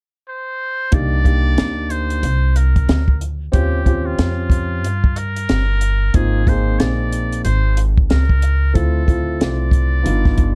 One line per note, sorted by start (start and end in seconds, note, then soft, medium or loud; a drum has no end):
0.29 0.95 C5 medium
0.91 1.55 C2 loud
0.91 1.18 A#3 medium
0.91 1.18 D4 medium
0.91 1.19 D#4 medium
0.91 1.19 G4 medium
0.91 1.92 D5 loud
0.91 kick loud
0.91 closed hi-hat medium
1.24 2.22 A#3 medium
1.24 2.22 D4 medium
1.24 2.23 D#4 medium
1.24 2.23 G4 medium
1.24 kick medium
1.24 closed hi-hat medium
1.58 2.20 D2 medium
1.58 snare loud
1.58 closed hi-hat medium
1.90 2.58 C5 loud
1.90 closed hi-hat medium
2.10 closed hi-hat soft
2.23 2.85 C2 loud
2.23 closed hi-hat medium
2.56 3.21 A#4 medium
2.56 closed hi-hat medium
2.76 kick medium
2.76 closed hi-hat soft
2.88 3.50 D2 medium
2.88 snare loud
2.88 closed hi-hat medium
3.08 kick medium
3.21 closed hi-hat medium
3.52 4.16 D#2 loud
3.52 3.79 C4 medium
3.52 3.79 C#4 medium
3.52 3.79 F4 medium
3.52 4.07 G4 medium
3.52 3.80 G4 medium
3.52 kick loud
3.52 closed hi-hat medium
3.85 4.83 C4 medium
3.85 4.83 C#4 medium
3.85 4.84 F4 medium
3.85 4.84 G4 medium
3.85 kick medium
3.85 closed hi-hat medium
4.06 5.19 F4 loud
4.19 4.84 F2 medium
4.19 snare loud
4.19 closed hi-hat medium
4.50 kick medium
4.50 closed hi-hat medium
4.84 5.46 G2 medium
4.84 closed hi-hat medium
5.04 kick medium
5.16 6.17 A#4 loud
5.16 closed hi-hat medium
5.36 closed hi-hat medium
5.49 6.11 G1 medium
5.49 snare loud
5.49 closed hi-hat medium
5.81 closed hi-hat medium
6.14 6.77 G#1 loud
6.14 6.40 A#3 medium
6.14 6.40 C4 medium
6.14 6.41 D#4 medium
6.14 6.41 F4 medium
6.14 6.50 G#4 loud
6.14 kick loud
6.14 closed hi-hat medium
6.46 7.44 A#3 medium
6.46 7.44 C4 medium
6.46 7.45 D#4 medium
6.46 7.45 G#4 medium
6.46 6.81 C5 medium
6.46 kick medium
6.46 closed hi-hat medium
6.79 7.42 A#1 medium
6.79 7.44 D5 loud
6.79 snare loud
6.79 closed hi-hat medium
7.13 closed hi-hat medium
7.33 closed hi-hat soft
7.44 8.07 G#1 medium
7.44 7.81 C5 loud
7.44 closed hi-hat medium
7.77 closed hi-hat medium
7.98 kick medium
8.10 8.72 C#2 medium
8.10 8.77 A#4 loud
8.10 snare loud
8.10 closed hi-hat medium
8.30 kick medium
8.42 closed hi-hat medium
8.73 9.37 D2 loud
8.73 9.00 A3 medium
8.73 9.01 C4 medium
8.73 9.01 E4 medium
8.73 9.02 F4 medium
8.73 9.40 A4 loud
8.73 kick loud
8.73 closed hi-hat medium
9.05 10.04 A3 medium
9.05 10.04 C4 medium
9.05 10.05 E4 medium
9.05 10.04 F4 medium
9.05 kick medium
9.05 closed hi-hat medium
9.40 10.02 C2 medium
9.40 10.55 D5 loud
9.40 snare loud
9.40 closed hi-hat medium
9.71 kick medium
9.71 closed hi-hat medium
10.03 10.55 G1 loud
10.03 10.55 B3 medium
10.03 10.55 D4 medium
10.03 10.55 D#4 medium
10.03 10.55 F4 medium
10.03 closed hi-hat medium
10.25 kick medium
10.25 snare soft
10.38 kick medium
10.38 closed hi-hat medium